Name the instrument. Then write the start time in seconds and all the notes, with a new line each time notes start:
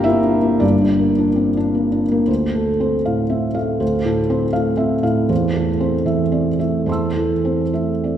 felt piano
Already playing: G1 G2 A#3 C4 D4 F4 G4 A#4 F5 G5 A#5
0.04 A#3 E4 E5
0.24 D4
0.42 A#3
0.60 G1 G2 D4 D5
0.81 D4
0.99 A#3
1.19 D4
1.36 C4
1.57 D4
1.75 A#3
1.92 D4
2.12 A#3
2.28 D2 C5
2.55 A3 A4
2.80 C4 C5
3.05 A2 F5
3.30 C4 E5
3.54 A3 F5
3.80 D2 C5
4.04 A2 A4
4.30 C4 C5
4.53 A3 F5
4.77 C4 E5
5.03 A2 F5
5.29 E2 C5
5.54 A3 A4
5.80 C4 C5
6.06 E3 E5
6.32 C4 D5
6.59 A3 E5
6.86 E2 C5 A5 C6
6.92 E6
7.16 E3 A4
7.45 C4 C5
7.73 A3 E5
8.04 C4 D5